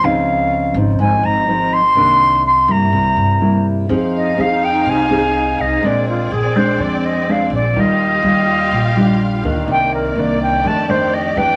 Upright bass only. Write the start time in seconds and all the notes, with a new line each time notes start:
0.03 C#2
0.74 G#1
0.99 G#1
1.23 G#1
1.95 C2
2.68 G2
2.92 C2
3.17 G2
3.89 F2
4.38 F2
4.86 C2
5.58 C2
5.83 A#1
6.31 A#1
6.78 F2
7.50 A#1
7.74 D#2
8.22 D#2
8.71 A#1
9.43 D2
9.68 C2
10.15 C2
10.63 F2
11.36 F2